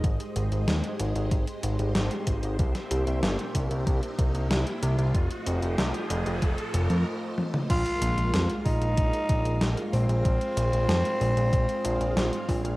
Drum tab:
CC |----------------|----------------|----------------|x---------------|
HH |xxxxxxxxxxxxxxxx|xxxxxxxxxxxxxxxx|xxxxxxxxxxxx----|xxxxxxoxxxxxxxox|
SD |----o-------o---|-o--o-------o---|----o-----------|----o-------o---|
T1 |----------------|----------------|--------------o-|----------------|
T2 |----------------|----------------|---------------o|----------------|
BD |o-------o-----o-|o-----o-o-o-----|o-------o-------|o-----o-o-o-----|

CC |----------------|
HH |xxxxxxoxxxxxxxox|
SD |----o-------o---|
T1 |----------------|
T2 |----------------|
BD |o-------o-----o-|